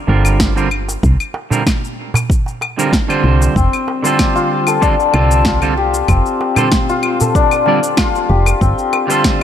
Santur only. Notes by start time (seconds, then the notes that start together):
3.56 C4
4.04 C5
4.36 F4
4.67 A4
4.82 D4
5.46 F4
5.77 G4
6.09 C4
6.58 C5
6.90 F4
7.21 A4
7.35 D4
7.98 F4
8.29 G4
8.61 C4
9.10 C5